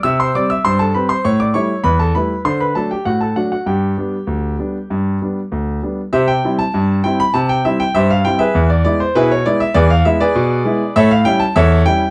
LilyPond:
<<
  \new Staff \with { instrumentName = "Grand piano" } { \time 2/4 \key c \major \tempo 4 = 99 <e'' e'''>16 <c'' c'''>16 <d'' d'''>16 <e'' e'''>16 <c'' c'''>16 <a' a''>16 <b' b''>16 <c'' c'''>16 | <cis'' cis'''>16 <d'' d'''>16 <cis'' cis'''>8 <b' b''>16 <a' a''>16 <b' b''>8 | <c'' c'''>16 <b' b''>16 <a' a''>16 <g' g''>16 <fis' fis''>16 <a' a''>16 <fis' fis''>16 <fis' fis''>16 | <g' g''>2~ |
<g' g''>4 r4 | <g' c'' e''>16 g''8 a''8. g''16 b''16 | a''16 g''16 e''16 g''16 <g' c'' e''>16 f''16 g''16 <aes' b' e''>16~ | <aes' b' e''>16 d''16 d''16 c''16 <e' gis' b'>16 des''16 d''16 e''16 |
<gis' b' d''>16 f''16 e''16 <gis' b' d''>4~ <gis' b' d''>16 | <a' cis'' e''>16 f''16 g''16 a''16 <a' cis'' e''>8 g''8 | }
  \new Staff \with { instrumentName = "Grand piano" } { \clef bass \time 2/4 \key c \major c8 <g c'>8 g,8 <g c'>8 | a,8 <g a e'>8 e,8 <g a e'>8 | d8 <fis a d'>8 a,8 <fis a d'>8 | g,8 <g b d'>8 d,8 <g b d'>8 |
g,8 <g b d'>8 d,8 <g b d'>8 | c8 <g c' e'>8 g,8 <g c' e'>8 | c8 <g c' e'>8 g,8 <g c' e'>8 | e,8 <gis b e'>8 b,8 <gis b e'>8 |
e,8 <gis b e'>8 b,8 <gis b e'>8 | a,8 <g cis' e'>8 e,8 <g cis' e'>8 | }
>>